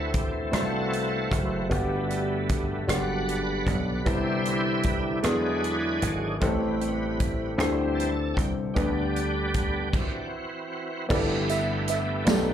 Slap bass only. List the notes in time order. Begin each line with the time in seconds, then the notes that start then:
Already playing: D2
0.53 C2
1.31 F#1
1.71 G1
2.88 F#1
3.67 B1
4.06 C2
5.24 E2
6.02 G#1
6.42 A1
7.58 D2
8.37 C2
8.76 D2
11.10 G1
12.27 B1